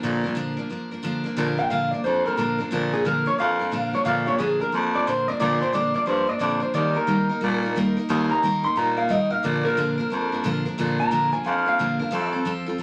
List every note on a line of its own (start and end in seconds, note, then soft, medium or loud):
0.03 0.41 A#2 medium
0.03 0.24 A#2 medium
0.03 0.24 D3 medium
0.03 0.25 F3 medium
0.03 0.25 A#3 loud
0.03 0.23 D4 loud
0.03 0.23 A#4 loud
0.24 0.35 F3 soft
0.24 0.35 A#3 medium
0.24 0.35 D4 medium
0.24 0.36 A#4 medium
0.35 0.57 A#2 medium
0.35 0.57 D3 medium
0.35 0.58 F3 medium
0.35 0.58 A#3 medium
0.35 0.57 D4 loud
0.35 0.56 A#4 loud
0.57 0.62 A#2 medium
0.57 0.68 F3 medium
0.57 0.69 A#3 medium
0.57 0.70 D4 medium
0.57 0.69 A#4 medium
0.69 0.91 F3 medium
0.69 0.92 A#3 medium
0.69 0.91 D4 medium
0.69 0.90 A#4 medium
0.91 1.02 F3 soft
0.91 1.03 A#3 medium
0.91 1.04 D4 medium
0.91 1.03 A#4 medium
1.03 1.25 A#2 medium
1.03 1.25 D3 medium
1.03 1.25 F3 medium
1.03 1.25 A#3 medium
1.03 1.24 D4 loud
1.03 1.23 A#4 loud
1.24 1.36 F3 medium
1.24 1.36 A#3 medium
1.24 1.37 D4 medium
1.24 1.37 A#4 medium
1.36 1.58 A#2 medium
1.36 1.76 A#2 medium
1.36 1.58 D3 loud
1.36 1.59 F3 medium
1.36 1.59 A#3 medium
1.36 1.58 D4 loud
1.36 1.56 A#4 loud
1.58 1.70 F3 soft
1.58 1.70 A#3 soft
1.58 1.71 D4 medium
1.58 1.70 A#4 medium
1.58 1.70 G5 loud
1.70 1.92 A#2 medium
1.70 1.92 D3 medium
1.70 1.93 F3 medium
1.70 1.93 A#3 medium
1.70 1.92 D4 medium
1.70 1.91 A#4 medium
1.70 1.91 F5 medium
1.91 1.97 A#2 medium
1.91 2.03 F3 soft
1.91 2.04 A#3 medium
1.91 2.05 D4 medium
1.91 2.05 A#4 medium
1.91 2.04 D5 medium
2.04 2.43 F2 medium
2.04 2.26 F3 medium
2.04 2.26 A#3 medium
2.04 2.26 D4 medium
2.04 2.25 A#4 medium
2.04 2.25 C5 medium
2.25 2.37 F3 soft
2.25 2.37 A#3 soft
2.25 2.38 D4 soft
2.25 2.37 A#4 medium
2.25 2.38 A#4 medium
2.37 2.59 A#2 medium
2.37 2.59 D3 medium
2.37 2.60 F3 medium
2.37 2.59 A#3 medium
2.37 2.58 D4 medium
2.37 2.59 A#4 medium
2.37 2.57 A#4 medium
2.58 2.65 F2 medium
2.58 2.71 F3 soft
2.58 2.71 A#3 medium
2.58 2.71 D4 medium
2.58 2.71 A#4 medium
2.71 2.93 A#2 medium
2.71 3.10 A#2 medium
2.71 2.93 D3 medium
2.71 2.93 F3 loud
2.71 2.93 A#3 medium
2.71 2.92 D4 loud
2.71 2.91 A#4 loud
2.92 3.05 F3 soft
2.92 3.05 A#3 soft
2.92 3.05 D4 soft
2.92 3.05 G#4 loud
2.92 3.05 A#4 medium
3.05 3.27 A#2 medium
3.05 3.27 D3 medium
3.05 3.27 F3 medium
3.05 3.27 A#3 medium
3.05 3.26 D4 medium
3.05 3.27 A#4 medium
3.05 3.25 A#4 medium
3.26 3.32 A#2 medium
3.26 3.37 F3 soft
3.26 3.38 A#3 soft
3.26 3.39 D4 medium
3.26 3.39 A#4 medium
3.26 3.39 C#5 medium
3.38 3.78 F2 medium
3.38 3.60 F3 medium
3.38 3.60 A#3 medium
3.38 3.59 D4 medium
3.38 3.58 A#4 medium
3.38 3.93 F5 loud
3.59 3.71 F3 soft
3.59 3.72 A#3 soft
3.59 3.72 D4 medium
3.59 3.72 A#4 medium
3.71 3.93 A#2 medium
3.71 3.94 D3 medium
3.71 3.94 F3 medium
3.71 3.94 A#3 medium
3.71 3.93 D4 medium
3.71 3.92 A#4 medium
3.93 3.99 F2 medium
3.93 4.05 F3 medium
3.93 4.05 A#3 medium
3.93 4.05 D4 medium
3.93 4.06 A#4 medium
3.93 4.05 C#5 medium
4.05 4.27 A#2 medium
4.05 4.45 A#2 medium
4.05 4.27 D3 medium
4.05 4.27 F3 medium
4.05 4.27 A#3 medium
4.05 4.26 D4 medium
4.05 4.25 A#4 medium
4.05 4.27 F5 medium
4.26 4.38 F3 soft
4.26 4.39 A#3 medium
4.26 4.39 D4 medium
4.26 4.39 A#4 medium
4.26 4.39 C#5 medium
4.38 4.61 A#2 medium
4.38 4.61 D3 medium
4.38 4.61 F3 medium
4.38 4.61 A#3 medium
4.38 4.60 D4 medium
4.38 4.60 G#4 medium
4.38 4.59 A#4 medium
4.60 4.66 A#2 medium
4.60 4.71 F3 soft
4.60 4.72 A#3 soft
4.60 4.73 D4 medium
4.60 4.73 A#4 medium
4.72 5.12 F2 loud
4.72 4.94 F3 medium
4.72 4.95 A#3 medium
4.72 4.94 D4 medium
4.72 4.92 A#4 medium
4.94 5.06 F3 soft
4.94 5.07 A#3 soft
4.94 5.07 D4 medium
4.94 5.06 A#4 medium
4.94 5.07 D5 loud
5.07 5.28 A#2 medium
5.07 5.29 D3 medium
5.07 5.29 F3 medium
5.07 5.29 A#3 medium
5.07 5.28 D4 medium
5.07 5.27 A#4 medium
5.07 5.28 C5 medium
5.28 5.33 F2 medium
5.28 5.39 F3 medium
5.28 5.40 A#3 medium
5.28 5.41 D4 medium
5.28 5.41 A#4 medium
5.28 5.39 D5 medium
5.40 5.62 A#2 medium
5.40 5.79 A#2 medium
5.40 5.62 D3 medium
5.40 5.62 F3 medium
5.40 5.62 A#3 medium
5.40 5.61 D4 medium
5.40 5.60 A#4 medium
5.40 5.61 D5 loud
5.61 5.73 F3 soft
5.61 5.73 A#3 soft
5.61 5.73 D4 medium
5.61 5.74 A#4 medium
5.61 5.74 C5 medium
5.73 5.95 A#2 medium
5.73 5.95 D3 medium
5.73 5.96 F3 medium
5.73 5.95 A#3 medium
5.73 5.94 D4 medium
5.73 5.93 A#4 medium
5.73 5.95 D5 medium
5.94 6.00 A#2 medium
5.94 6.05 F3 soft
5.94 6.06 A#3 soft
5.94 6.07 D4 medium
5.94 6.07 A#4 medium
5.94 6.07 D5 medium
6.06 6.26 G2 medium
6.06 6.28 F3 medium
6.06 6.28 A#3 medium
6.06 6.27 D4 medium
6.06 6.26 A#4 medium
6.06 6.29 C5 medium
6.27 6.34 G2 medium
6.27 6.39 F3 soft
6.27 6.40 A#3 medium
6.27 6.40 D4 soft
6.27 6.40 A#4 medium
6.27 6.40 D5 medium
6.39 6.60 F2 medium
6.39 6.62 A#2 medium
6.39 6.62 D3 medium
6.39 6.62 F3 medium
6.39 6.61 A#3 medium
6.39 6.60 D4 medium
6.39 6.59 A#4 medium
6.39 6.63 D5 loud
6.60 6.68 F2 medium
6.60 6.74 F3 soft
6.60 6.73 A#3 soft
6.60 6.74 D4 medium
6.60 6.74 A#4 medium
6.60 6.74 C5 medium
6.74 7.14 D#2 medium
6.74 6.96 D#3 medium
6.74 6.96 G3 medium
6.74 6.96 A#3 medium
6.74 6.95 D#4 medium
6.74 6.93 A#4 loud
6.74 6.96 D5 medium
6.94 7.07 A#3 soft
6.94 7.07 D#4 medium
6.94 7.08 A#4 medium
6.94 7.94 A#4 loud
7.07 7.29 D#3 medium
7.07 7.30 G3 medium
7.07 7.30 A#3 medium
7.07 7.30 D#4 medium
7.07 7.28 A#4 medium
7.29 7.35 D#2 medium
7.29 7.41 A#3 soft
7.29 7.42 D#4 medium
7.29 7.42 A#4 medium
7.41 7.81 A#2 medium
7.41 7.63 G3 medium
7.41 7.64 A#3 medium
7.41 7.63 D#4 medium
7.41 7.62 A#4 medium
7.63 7.76 A#3 medium
7.63 7.76 D#4 medium
7.63 7.75 A#4 medium
7.76 7.97 D#3 medium
7.76 7.98 G3 medium
7.76 7.98 A#3 medium
7.76 7.97 D#4 loud
7.76 7.95 A#4 loud
7.97 8.09 A#3 medium
7.97 8.09 D#4 medium
7.97 8.09 A#4 medium
8.09 8.48 D#2 medium
8.09 8.31 D#3 loud
8.09 8.31 G3 loud
8.09 8.31 A#3 medium
8.09 8.30 D#4 loud
8.09 8.28 A#4 loud
8.29 8.43 A#3 soft
8.29 8.43 D#4 soft
8.29 8.42 A#4 medium
8.29 8.64 A#5 loud
8.43 8.64 D#3 medium
8.43 8.65 G3 medium
8.43 8.65 A#3 medium
8.43 8.64 D#4 medium
8.43 8.62 A#4 medium
8.64 8.69 D#2 medium
8.64 8.76 A#3 soft
8.64 8.76 D#4 medium
8.64 8.76 A#4 medium
8.64 8.76 C6 medium
8.76 9.15 A#2 medium
8.76 8.98 G3 medium
8.76 8.98 A#3 medium
8.76 8.97 D#4 medium
8.76 8.96 A#4 medium
8.76 8.98 A#5 medium
8.97 9.09 A#3 soft
8.97 9.09 D#4 medium
8.97 9.10 A#4 medium
8.97 9.11 F5 medium
9.09 9.31 D#3 medium
9.09 9.31 G3 medium
9.09 9.32 A#3 medium
9.09 9.31 D#4 medium
9.09 9.29 A#4 medium
9.09 9.31 D#5 loud
9.30 9.37 A#2 medium
9.30 9.44 A#3 medium
9.30 9.44 D#4 medium
9.30 9.43 A#4 medium
9.30 9.43 F5 medium
9.43 9.65 A#2 medium
9.43 9.83 A#2 medium
9.43 9.65 D3 medium
9.43 9.65 F3 medium
9.43 9.65 A#3 medium
9.43 9.64 D4 medium
9.43 9.63 A#4 loud
9.43 9.64 D5 loud
9.65 9.76 F3 soft
9.65 9.77 A#3 soft
9.65 9.77 D4 medium
9.65 10.63 A#4 loud
9.65 9.77 A#4 medium
9.77 9.99 A#2 medium
9.77 9.99 D3 medium
9.77 9.99 F3 medium
9.77 9.99 A#3 medium
9.77 9.98 D4 medium
9.77 9.97 A#4 medium
9.98 10.04 A#2 medium
9.98 10.09 F3 soft
9.98 10.10 A#3 medium
9.98 10.11 D4 medium
9.98 10.10 A#4 medium
10.10 10.50 F2 medium
10.10 10.32 F3 medium
10.10 10.33 A#3 medium
10.10 10.32 D4 medium
10.10 10.31 A#4 medium
10.32 10.43 F3 soft
10.32 10.44 A#3 medium
10.32 10.44 D4 medium
10.32 10.44 A#4 medium
10.44 10.66 A#2 medium
10.44 10.66 D3 medium
10.44 10.66 F3 medium
10.44 10.66 A#3 loud
10.44 10.65 D4 loud
10.44 10.64 A#4 loud
10.65 10.71 F2 medium
10.65 10.77 F3 medium
10.65 10.78 A#3 medium
10.65 10.78 D4 medium
10.65 10.78 A#4 medium
10.78 11.00 A#2 medium
10.78 11.17 A#2 medium
10.78 11.00 D3 loud
10.78 11.00 F3 loud
10.78 11.00 A#3 medium
10.78 10.99 D4 loud
10.78 10.98 A#4 medium
10.99 11.11 F3 soft
10.99 11.11 A#3 medium
10.99 11.11 D4 medium
10.99 11.12 A#4 medium
10.99 11.32 A#5 loud
11.11 11.33 A#2 medium
11.11 11.33 D3 medium
11.11 11.33 F3 medium
11.11 11.33 A#3 medium
11.11 11.32 D4 medium
11.11 11.31 A#4 medium
11.32 11.38 A#2 medium
11.32 11.43 F3 soft
11.32 11.45 A#3 medium
11.32 11.45 D4 medium
11.32 11.45 A#4 medium
11.32 11.46 G#5 medium
11.44 11.84 F2 medium
11.44 11.66 F3 medium
11.44 11.67 A#3 medium
11.44 11.66 D4 medium
11.44 11.65 A#4 medium
11.44 11.67 F5 medium
11.66 11.79 F3 soft
11.66 11.79 A#3 soft
11.66 11.79 D4 medium
11.66 11.78 A#4 medium
11.66 12.33 F5 medium
11.79 12.01 A#2 medium
11.79 12.01 D3 medium
11.79 12.01 F3 medium
11.79 12.00 A#3 medium
11.79 11.99 D4 medium
11.79 11.98 A#4 medium
11.99 12.05 F2 medium
11.99 12.10 F3 soft
11.99 12.11 A#3 medium
11.99 12.12 D4 medium
11.99 12.12 A#4 medium
12.11 12.51 F2 medium
12.11 12.33 F3 loud
12.11 12.34 C4 loud
12.11 12.33 F4 loud
12.11 12.31 A4 loud
12.33 12.44 C4 soft
12.33 12.45 F4 medium
12.33 12.45 A4 medium
12.45 12.67 F3 medium
12.45 12.67 C4 medium
12.45 12.66 F4 medium
12.45 12.65 A4 loud
12.66 12.73 F2 medium
12.66 12.78 C4 medium
12.66 12.79 F4 medium
12.66 12.79 A4 medium
12.78 12.83 F3 medium
12.78 12.83 C4 medium